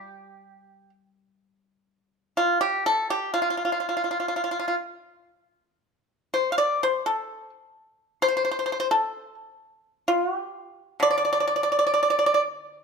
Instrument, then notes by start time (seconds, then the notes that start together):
pipa
Already playing: G3 G4
2.37 F4
2.61 G4
2.86 A4
3.10 G4
3.34 F4
3.42 F4
3.50 F4
3.57 F4
3.65 F4
3.72 F4
3.80 F4
3.89 F4
3.97 F4
4.04 F4
4.11 F4
4.20 F4
4.28 F4
4.36 F4
4.44 F4
4.51 F4
4.59 F4
4.68 F4
6.34 C5
6.52 F5
6.58 D5
6.83 C5
7.06 A4
8.22 C5
8.29 C5
8.37 C5
8.45 C5
8.51 C5
8.59 C5
8.66 C5
8.72 C5
8.80 C5
8.91 A4
10.08 F4
10.35 G4
11.00 D3 D5
11.10 D5
11.18 D5
11.25 D5
11.33 D5
11.40 D5
11.48 D5
11.56 D5
11.63 D5
11.72 D5
11.79 D5
11.87 D5
11.94 D5
12.03 D5
12.10 D5
12.19 D5
12.26 D5
12.34 D5